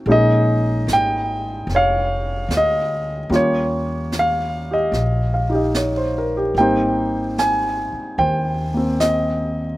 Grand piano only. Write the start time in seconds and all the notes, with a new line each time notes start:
0.07 G#3 A#3 C#4 D#4 G#4
0.12 D#5
0.93 G5
1.75 C#5 F5
2.57 D#5
3.30 G3 A#3 C#4 F4 G4
3.36 C#5
4.19 F5
4.71 G4 D#5
5.34 F5
5.49 D#4 G4
5.55 D#5
5.77 C#5
5.97 C5
6.18 A#4
6.37 G4
6.58 G3 A#3 C4 D#4 C5 G5
7.39 G#5
8.19 C5 G5
8.74 A#3 C4
9.00 D#5